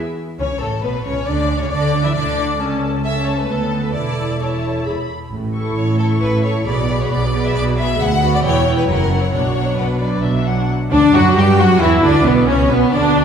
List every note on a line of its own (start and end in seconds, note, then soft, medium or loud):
0.39 0.47 C#2 soft
0.39 0.47 C#3 medium
0.39 0.47 C#4 medium
0.39 0.60 C#5 medium
0.61 0.83 A1 soft
0.61 0.83 A2 soft
0.61 0.70 A3 soft
0.61 0.84 A4 medium
0.61 0.69 A4 soft
0.83 1.05 B1 medium
0.83 1.05 B2 medium
0.83 0.92 B3 medium
0.83 1.05 B4 medium
0.83 1.06 B4 medium
1.05 1.13 C#2 medium
1.05 1.14 C#3 medium
1.05 1.27 C#4 medium
1.05 1.27 C#5 medium
1.26 1.60 D2 medium
1.26 1.60 D3 medium
1.26 1.61 D4 medium
1.26 1.60 D5 medium
1.59 1.72 C#3 medium
1.59 1.65 C#4 medium
1.59 1.71 C#5 medium
1.59 1.66 C#5 medium
1.70 2.04 D2 medium
1.70 2.04 D3 medium
1.70 2.04 D4 medium
1.70 2.03 D5 medium
1.70 2.04 D5 medium
2.05 2.16 E3 medium
2.05 2.16 E4 medium
2.05 2.16 E5 medium
2.14 2.59 D2 medium
2.14 2.59 D3 medium
2.14 2.59 D4 medium
2.14 2.58 D5 medium
2.14 2.59 D5 medium
2.59 3.45 C#2 medium
2.59 3.45 C#2 soft
2.59 3.01 C#4 soft
2.59 3.01 A4 medium
2.59 3.02 A5 soft
3.03 3.49 C#4 soft
3.03 3.48 A4 soft
3.03 3.24 E5 medium
3.03 3.48 A5 medium
3.25 3.37 C#5 medium
3.37 3.49 B4 medium
3.48 3.93 D2 soft
3.48 3.93 D2 medium
3.48 3.94 B3 soft
3.48 3.83 A4 medium
3.48 3.94 A4 soft
3.48 3.93 A5 soft
3.83 3.94 B4 soft
3.92 4.85 E1 soft
3.92 4.85 E2 soft
3.92 4.39 E4 soft
3.92 4.39 A4 soft
3.92 4.38 D5 medium
3.92 4.39 A5 soft
4.39 4.85 E4 soft
4.39 4.85 A4 soft
4.39 4.86 C#5 soft
4.39 4.85 A5 soft
4.86 4.94 E1 soft
4.86 4.94 E2 soft
4.86 4.94 E4 soft
4.86 4.94 G#4 soft
4.86 5.12 B5 soft
5.32 5.71 A1 medium
5.32 5.72 A2 medium
5.54 5.98 E4 soft
5.54 5.98 A4 soft
5.54 5.98 C#6 soft
5.76 6.16 A1 medium
5.76 6.16 A2 medium
5.76 5.97 C#5 medium
5.98 6.43 E4 soft
5.98 6.06 A4 medium
5.98 6.43 A4 soft
5.98 6.42 C#6 soft
6.20 6.61 A1 medium
6.20 6.61 A2 medium
6.20 6.43 B4 medium
6.42 6.66 E4 soft
6.42 6.66 A4 soft
6.42 6.65 C#5 medium
6.42 6.65 C#6 soft
6.65 7.05 B1 medium
6.65 7.05 B2 medium
6.65 6.87 B3 soft
6.65 6.87 G#4 soft
6.65 6.99 D5 medium
6.65 6.87 B5 soft
6.88 7.32 B3 medium
6.88 7.32 G#4 soft
6.88 7.32 B5 soft
6.99 7.10 C#5 medium
7.10 7.50 B1 medium
7.10 7.50 B2 medium
7.10 7.45 D5 medium
7.34 7.77 B3 medium
7.34 7.77 G#4 medium
7.34 7.76 B5 medium
7.46 7.56 E5 medium
7.55 7.95 B1 medium
7.55 7.95 B2 medium
7.55 7.63 D5 medium
7.78 8.00 B3 medium
7.78 8.00 G#4 medium
7.78 8.00 E5 medium
7.78 7.99 B5 medium
8.00 8.39 D2 medium
8.00 8.33 F#5 loud
8.22 8.43 B3 medium
8.22 8.43 F#4 medium
8.22 8.43 B5 soft
8.35 8.39 D5 medium
8.43 8.83 E1 medium
8.43 8.83 E2 medium
8.43 8.65 B3 medium
8.43 8.65 E4 medium
8.43 8.76 C#5 loud
8.43 8.65 G5 medium
8.66 8.88 B3 medium
8.66 8.87 E4 medium
8.66 8.88 G5 medium
8.77 8.88 B4 medium
8.87 9.28 F#1 medium
8.87 9.27 F#2 medium
8.87 9.10 F#3 medium
8.87 9.09 E4 medium
8.87 9.21 A#4 medium
8.87 9.10 F#5 medium
9.10 9.32 F#3 soft
9.10 9.32 E4 soft
9.10 9.32 F#5 medium
9.22 9.31 C#5 medium
9.33 9.73 B1 medium
9.33 9.73 B2 medium
9.33 9.55 F#3 soft
9.33 9.55 D4 soft
9.33 9.77 C#5 medium
9.33 9.54 F#5 soft
9.55 10.00 F#3 soft
9.55 10.00 D4 soft
9.55 9.73 F#5 soft
9.77 10.18 B1 medium
9.77 10.18 B2 medium
9.77 10.23 B4 medium
9.77 9.85 F#5 medium
10.00 10.46 F#3 soft
10.00 10.46 D4 soft
10.00 10.23 D5 medium
10.23 10.64 B1 medium
10.23 10.64 B2 medium
10.23 10.46 E5 medium
10.46 10.69 F#3 soft
10.46 10.69 D4 soft
10.46 10.69 F#5 medium
10.91 11.00 D2 medium
10.91 11.00 D3 medium
10.91 11.13 D4 loud
10.91 11.00 D4 medium
10.91 11.12 D5 medium
11.14 11.36 F#2 loud
11.14 11.36 F#3 loud
11.14 11.22 F#4 loud
11.14 11.37 F#4 loud
11.14 11.36 F#5 medium
11.36 11.59 G2 medium
11.36 11.59 G3 medium
11.36 11.59 G4 medium
11.36 11.45 G4 medium
11.36 11.58 G5 medium
11.58 11.81 F#2 medium
11.58 11.81 F#3 loud
11.58 11.81 F#4 loud
11.58 11.67 F#4 medium
11.58 11.82 F#5 medium
11.81 12.03 E2 medium
11.81 12.03 E3 medium
11.81 12.03 E4 medium
11.81 11.90 E5 medium
12.03 12.25 D2 medium
12.03 12.25 D3 medium
12.03 12.25 D4 medium
12.03 12.13 D4 medium
12.03 12.25 D5 medium
12.25 12.48 B1 medium
12.25 12.48 B2 medium
12.25 12.48 B3 medium
12.25 12.34 B3 medium
12.25 12.48 B4 medium
12.47 12.70 C#2 medium
12.47 12.70 C#3 medium
12.47 12.70 C#4 loud
12.47 12.57 C#4 medium
12.47 12.71 C#5 medium
12.70 12.78 B1 medium
12.70 12.78 B2 medium
12.70 12.92 B3 medium
12.70 12.93 B3 medium
12.70 12.92 B4 medium
12.92 13.24 D2 medium
12.92 13.24 D3 medium
12.92 13.24 D4 loud
12.92 13.24 D4 medium
12.92 13.24 D5 medium